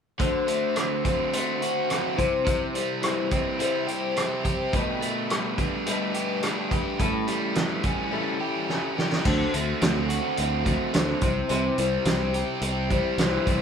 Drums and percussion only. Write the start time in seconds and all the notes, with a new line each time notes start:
0.20 kick, closed hi-hat
0.48 closed hi-hat
0.76 cross-stick, closed hi-hat
1.05 kick, closed hi-hat
1.33 closed hi-hat
1.62 closed hi-hat
1.90 cross-stick, closed hi-hat
2.19 kick, closed hi-hat
2.46 kick, closed hi-hat
2.75 closed hi-hat
3.03 cross-stick, closed hi-hat
3.31 kick, closed hi-hat
3.60 closed hi-hat
3.88 closed hi-hat
4.17 cross-stick, closed hi-hat
4.45 kick, closed hi-hat
4.73 kick, closed hi-hat
5.02 closed hi-hat
5.30 cross-stick, closed hi-hat
5.58 kick, closed hi-hat
5.87 closed hi-hat
6.14 closed hi-hat
6.43 cross-stick, closed hi-hat
6.71 kick, closed hi-hat
7.00 kick, closed hi-hat
7.28 closed hi-hat
7.55 snare, closed hi-hat
7.83 kick, closed hi-hat
8.69 snare
8.98 snare
9.12 snare
9.25 kick, crash
9.54 closed hi-hat
9.81 snare, closed hi-hat
10.10 closed hi-hat
10.37 closed hi-hat
10.66 kick, closed hi-hat
10.94 snare, closed hi-hat
11.21 kick, closed hi-hat
11.49 closed hi-hat
11.78 closed hi-hat
12.05 snare, closed hi-hat
12.34 closed hi-hat
12.62 closed hi-hat
12.90 kick, closed hi-hat
13.18 snare, closed hi-hat
13.47 kick, closed hi-hat